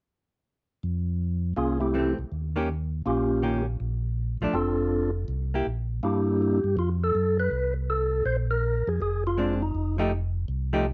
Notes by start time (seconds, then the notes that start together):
0.83 F2
1.57 C2 A#3 C#4 F4 G#4
1.80 A3 C4 E4 G4
1.94 E3 A3 C4
2.19 C2
2.32 D#2
2.56 D#3 A#3 C#4 G4
3.06 A#1 A#3 C#4 F4 G4
3.42 D#3 A#3 C#4 G4
3.80 A#1
4.41 A#1 F3 A3 D4
4.53 F1 C4 D4 F4 A4
5.28 C2
5.54 A#3 E4 G4
5.66 A#1
6.03 G2 A#3 D4 E4 G4
6.42 G4
6.64 G2
6.77 F2 F4
7.04 A4
7.15 F#2
7.40 B4
7.51 C2
7.90 A4
8.25 A#1 C5
8.51 A#4
8.87 F2 G#4
9.01 F1 G#4
9.27 F4
9.38 G#3 C4 D4
9.53 C4
9.62 D#4
9.75 F1
9.98 F3 A3 D#4 G4
10.48 C2
10.73 F3 A3 D#4 G4